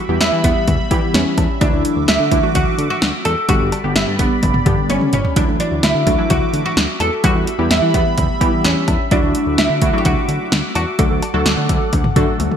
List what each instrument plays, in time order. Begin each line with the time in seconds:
Already playing: analog synth pad G3 E5 B5, oud F#4
0.09 analog synth bass E2, analog polysynth E3 G3 B3 E4 G4
0.21 analog synth bass E2, oud E4, snare, closed hi-hat
0.32 analog synth bass E3
0.44 analog synth bass E2, oud B3, kick, closed hi-hat
0.68 analog synth bass E2, kick, closed hi-hat, mid tom
0.91 analog polysynth E3 G3 B3 E4 G4, analog synth bass E3, kick, closed hi-hat
1.14 analog synth bass E2, oud C#4, snare, closed hi-hat
1.38 analog synth bass E2, kick, closed hi-hat, cowbell
1.61 analog synth bass D2, analog polysynth E3 F#3 A3 D4 E4, oud D4, analog synth pad F#4 D6, kick, closed hi-hat
1.73 analog synth bass D2
1.85 closed hi-hat
1.96 analog synth bass D2
2.08 analog synth bass D2, oud E4, snare, closed hi-hat
2.20 analog synth bass D3
2.31 analog synth bass D2, analog polysynth E3 F#3 A3 D4 E4, kick, closed hi-hat
2.43 analog polysynth E3 F#3 A3 D4 F#4
2.55 analog synth bass D2, oud F#4, kick, closed hi-hat, mid tom
2.78 analog synth bass D3, closed hi-hat
2.90 oud F#4
3.02 analog synth bass D2, snare, closed hi-hat
3.25 analog synth bass E2, oud A4, closed hi-hat, cowbell
3.49 analog synth bass G1, analog polysynth D3 G3 B3 D4 G4, analog synth pad G3 D5 B5, oud F#4, kick, closed hi-hat
3.61 analog synth bass G1
3.72 closed hi-hat, cowbell
3.84 analog synth bass G1, analog polysynth D3 G3 B3 D4 G4
3.96 analog synth bass G1, oud E4, snare, closed hi-hat
4.08 analog synth bass G2
4.19 analog synth bass G1, oud B3, kick, closed hi-hat
4.43 analog synth bass G1, kick, closed hi-hat, mid tom
4.54 mid tom
4.66 analog synth bass G2, analog polysynth D3 G3 B3 D4 G4, kick, closed hi-hat, mid tom
4.89 analog synth bass G1, oud C#4, closed hi-hat, high tom
5.01 mid tom
5.13 analog synth bass G1, oud C#4, closed hi-hat, mid tom
5.25 floor tom
5.36 analog synth bass D2, analog polysynth E3 F#3 A3 D4 E4, oud D4, analog synth pad F#4 E5 D6, kick, closed hi-hat
5.48 analog synth bass D2
5.60 oud D4, closed hi-hat
5.71 analog synth bass D2
5.83 analog synth bass D2, oud E4, snare, closed hi-hat
5.95 analog synth bass D3
6.07 analog synth bass D2, analog polysynth E3 F#3 A3 D4 F#4, kick, closed hi-hat
6.18 analog polysynth E3 F#3 A3 D4 E4
6.30 analog synth bass D2, oud F#4, kick, closed hi-hat, mid tom
6.53 analog synth bass D3, closed hi-hat
6.66 oud F#4
6.77 analog synth bass D2, snare, closed hi-hat
7.00 analog synth bass E2, oud A4, closed hi-hat, cowbell
7.24 analog synth bass E2, analog polysynth E3 G3 B3 E4 G4, analog synth pad G3 B5, oud F#4, kick, closed hi-hat
7.35 analog synth bass E2
7.47 closed hi-hat
7.59 analog synth bass E2, analog polysynth E3 G3 B3 E4 G4
7.70 analog synth bass E2, oud E4, snare, closed hi-hat
7.82 analog synth bass E3
7.94 analog synth bass E2, oud B3, kick, closed hi-hat
8.18 analog synth bass E2, kick, closed hi-hat, mid tom
8.41 analog polysynth E3 G3 B3 E4 G4, analog synth bass E3, kick, closed hi-hat
8.64 analog synth bass E2, oud C#4, snare, closed hi-hat
8.88 analog synth bass E2, kick, closed hi-hat, cowbell
9.11 analog synth bass D2, analog polysynth F#3 A3 D4 E4 F#4, oud D4, analog synth pad F#4 D6, kick, closed hi-hat
9.23 analog synth bass D2
9.35 closed hi-hat
9.47 analog synth bass D2
9.58 analog synth bass D2, oud E4, snare, closed hi-hat
9.70 analog synth bass D3
9.82 analog synth bass D2, analog polysynth F#3 A3 D4 E4 F#4, kick, closed hi-hat
9.93 analog polysynth F#3 A3 D4 E4 F#4
9.98 oud G4
10.05 analog synth bass D2, oud F#4, kick, closed hi-hat, mid tom
10.28 analog synth bass D3, closed hi-hat
10.52 analog synth bass D2, snare, closed hi-hat
10.75 analog synth bass E2, oud F#4, closed hi-hat, cowbell
10.99 analog synth bass D2, analog polysynth F#3 A3 D4 F#4 A4, analog synth pad A4 F#5, kick, closed hi-hat
11.11 analog synth bass D2
11.22 closed hi-hat, cowbell
11.34 analog synth bass D2, analog polysynth F#3 A3 D4 F#4 A4
11.46 analog synth bass D2, snare, closed hi-hat
11.57 analog synth bass D3
11.69 analog synth bass D2, kick, closed hi-hat
11.93 analog synth bass D2, kick, closed hi-hat, mid tom
12.04 mid tom
12.16 analog synth bass D3, analog polysynth F#3 A3 D4 F#4 A4, kick, closed hi-hat, mid tom
12.39 analog synth bass D2, closed hi-hat, high tom
12.51 mid tom